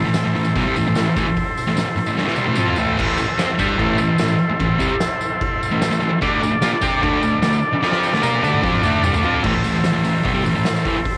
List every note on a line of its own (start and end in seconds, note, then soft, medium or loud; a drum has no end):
0.00 2.93 E4 medium
0.00 2.94 A4 medium
0.00 2.95 C5 medium
0.05 0.20 A2 medium
0.05 0.21 E3 medium
0.05 snare soft
0.14 snare loud
0.14 open hi-hat medium
0.14 tambourine loud
0.24 0.34 A2 medium
0.24 0.34 E3 medium
0.24 snare soft
0.35 0.51 A2 medium
0.35 0.51 E3 medium
0.35 open hi-hat medium
0.45 tambourine medium
0.55 0.64 B2 loud
0.55 0.65 F#3 loud
0.55 kick loud
0.55 open hi-hat medium
0.55 tambourine soft
0.66 0.75 C3 medium
0.66 0.75 G3 medium
0.76 0.86 A2 medium
0.76 0.86 E3 medium
0.76 open hi-hat soft
0.76 tambourine medium
0.88 0.96 A2 medium
0.88 0.96 E3 medium
0.95 1.12 A2 medium
0.95 1.13 E3 medium
0.95 snare loud
0.95 open hi-hat medium
0.95 tambourine medium
1.16 1.25 A2 medium
1.16 1.26 E3 loud
1.16 kick loud
1.16 open hi-hat medium
1.16 tambourine medium
1.27 muted distorted electric guitar stroke medium
1.36 kick loud
1.36 open hi-hat medium
1.36 tambourine soft
1.57 open hi-hat medium
1.57 tambourine medium
1.67 1.75 A2 medium
1.67 1.75 E3 medium
1.67 snare soft
1.76 1.85 A2 medium
1.76 1.86 E3 medium
1.76 snare loud
1.76 open hi-hat medium
1.76 tambourine medium
1.86 muted distorted electric guitar stroke medium
1.86 snare soft
1.86 tambourine soft
1.96 muted distorted electric guitar stroke medium
1.96 open hi-hat medium
1.96 tambourine soft
2.06 2.17 A2 medium
2.06 2.17 E3 medium
2.06 tambourine medium
2.16 2.27 G2 loud
2.16 2.26 D3 loud
2.16 snare medium
2.16 tambourine soft
2.26 2.36 A2 medium
2.26 2.36 E3 loud
2.26 snare medium
2.26 tambourine soft
2.36 2.46 C3 loud
2.36 2.47 G3 medium
2.36 2.57 C6 medium
2.36 high tom medium
2.36 tambourine medium
2.47 2.56 A2 medium
2.47 2.57 E3 medium
2.47 high tom medium
2.47 tambourine soft
2.55 2.77 F3 medium
2.55 2.77 C4 medium
2.55 2.78 F4 loud
2.55 2.77 A5 medium
2.55 mid tom medium
2.55 tambourine loud
2.69 mid tom medium
2.76 2.97 A2 medium
2.76 2.98 E3 medium
2.76 2.98 A3 medium
2.76 floor tom medium
2.76 tambourine medium
2.81 2.98 E5 medium
2.87 floor tom medium
2.87 tambourine soft
2.97 3.17 A2 loud
2.97 3.17 E3 loud
2.97 3.18 A3 loud
2.97 kick loud
2.97 crash loud
2.97 tambourine soft
2.97 crash medium
3.02 6.19 E4 medium
3.02 6.20 A4 medium
3.02 6.20 C5 medium
3.18 3.27 A2 medium
3.18 3.28 E3 medium
3.18 tambourine medium
3.28 muted distorted electric guitar stroke medium
3.37 3.47 F3 medium
3.37 3.48 C4 loud
3.37 snare loud
3.37 tambourine loud
3.37 crash medium
3.48 muted distorted electric guitar stroke medium
3.58 3.78 G3 loud
3.58 3.78 D4 loud
3.58 3.79 G4 loud
3.58 kick loud
3.58 tambourine medium
3.78 3.98 A2 loud
3.78 3.98 E3 loud
3.78 3.99 A3 loud
3.78 kick loud
3.78 crash medium
3.98 4.15 A2 medium
3.98 4.15 E3 medium
3.98 tambourine medium
4.18 4.36 A2 medium
4.18 4.36 E3 medium
4.18 snare loud
4.18 tambourine loud
4.18 crash medium
4.28 tambourine medium
4.39 tambourine soft
4.49 muted distorted electric guitar stroke medium
4.59 4.76 A2 medium
4.59 4.76 E3 medium
4.59 kick medium
4.59 tambourine soft
4.59 crash medium
4.78 4.89 C3 medium
4.78 4.89 G3 medium
4.78 kick loud
4.78 tambourine medium
5.00 snare loud
5.00 tambourine loud
5.00 crash medium
5.21 tambourine medium
5.41 kick loud
5.41 crash medium
5.63 tambourine medium
5.71 5.87 A2 medium
5.71 5.87 E3 medium
5.82 snare loud
5.82 tambourine loud
5.82 crash medium
5.90 5.99 A2 medium
5.90 5.99 E3 medium
5.90 tambourine medium
6.00 6.09 A2 medium
6.00 6.11 E3 medium
6.00 tambourine soft
6.10 muted distorted electric guitar stroke medium
6.21 6.39 D3 loud
6.21 6.40 A3 loud
6.21 6.41 D4 loud
6.21 9.40 D4 medium
6.21 9.41 A4 medium
6.21 9.41 D5 medium
6.21 kick loud
6.21 tambourine soft
6.21 crash medium
6.40 6.50 D3 medium
6.40 6.51 A3 medium
6.40 tambourine medium
6.51 muted distorted electric guitar stroke medium
6.62 6.71 A#3 loud
6.62 6.71 F4 loud
6.62 snare loud
6.62 tambourine loud
6.62 crash medium
6.72 muted distorted electric guitar stroke medium
6.82 7.01 C4 loud
6.82 7.02 G4 loud
6.82 7.02 C5 loud
6.82 kick loud
6.82 tambourine medium
7.02 7.21 D3 loud
7.02 7.21 A3 loud
7.02 7.22 D4 loud
7.02 kick loud
7.02 crash medium
7.22 7.38 D3 medium
7.22 7.38 A3 medium
7.22 tambourine medium
7.42 7.58 D3 medium
7.42 7.59 A3 medium
7.42 snare loud
7.42 tambourine medium
7.42 crash medium
7.53 tambourine medium
7.63 tambourine soft
7.73 muted distorted electric guitar stroke medium
7.83 8.12 F3 loud
7.83 8.12 C4 loud
7.83 8.13 F4 loud
7.83 snare medium
7.83 tambourine soft
7.92 snare medium
7.92 tambourine soft
8.03 tambourine medium
8.13 8.22 D3 medium
8.13 8.22 A3 loud
8.13 snare medium
8.13 tambourine soft
8.22 8.42 A#3 medium
8.22 8.42 F4 loud
8.22 8.43 A#4 loud
8.22 high tom medium
8.22 tambourine loud
8.34 tambourine soft
8.42 8.62 D3 loud
8.42 8.62 A3 loud
8.42 8.63 D4 loud
8.42 high tom medium
8.42 tambourine medium
8.54 mid tom medium
8.63 8.82 F3 loud
8.63 8.83 C4 loud
8.63 8.83 F4 loud
8.63 kick loud
8.63 tambourine soft
8.73 mid tom medium
8.73 tambourine soft
8.83 9.02 D3 loud
8.83 9.03 A3 loud
8.83 9.03 D4 loud
8.83 mid tom medium
8.83 tambourine medium
9.03 9.13 C3 loud
9.03 9.13 G3 loud
9.03 mid tom loud
9.03 tambourine loud
9.13 9.23 D3 medium
9.13 9.24 A3 loud
9.13 floor tom medium
9.13 tambourine medium
9.23 9.43 F3 medium
9.23 9.44 C4 medium
9.23 9.44 F4 loud
9.23 floor tom loud
9.23 tambourine soft
9.34 floor tom medium
9.43 9.53 A2 loud
9.43 9.54 E3 loud
9.43 11.18 E4 medium
9.43 11.18 A4 medium
9.43 11.18 C5 medium
9.43 kick loud
9.43 crash loud
9.55 9.63 A2 medium
9.55 9.64 E3 medium
9.64 9.73 A2 medium
9.64 9.74 E3 medium
9.64 open hi-hat medium
9.64 tambourine medium
9.74 9.90 A2 medium
9.74 9.90 E3 medium
9.74 snare soft
9.84 snare loud
9.84 open hi-hat medium
9.84 tambourine medium
9.94 10.03 A2 medium
9.94 10.03 E3 medium
10.04 10.20 A2 medium
10.04 10.20 E3 medium
10.04 open hi-hat medium
10.04 tambourine medium
10.24 10.33 B2 medium
10.24 10.34 F#3 loud
10.24 kick loud
10.24 open hi-hat medium
10.24 tambourine soft
10.34 10.43 C3 medium
10.34 10.44 G3 loud
10.44 10.54 A2 medium
10.44 10.54 E3 medium
10.44 open hi-hat medium
10.44 tambourine medium
10.55 10.64 A2 medium
10.55 10.65 E3 medium
10.65 10.81 A2 medium
10.65 10.82 E3 medium
10.65 snare loud
10.65 open hi-hat medium
10.65 tambourine medium
10.76 tambourine medium
10.85 10.94 A2 medium
10.85 10.95 E3 loud
10.85 kick loud
10.85 open hi-hat medium
10.97 muted distorted electric guitar stroke medium
10.97 tambourine soft
11.05 kick loud
11.05 open hi-hat medium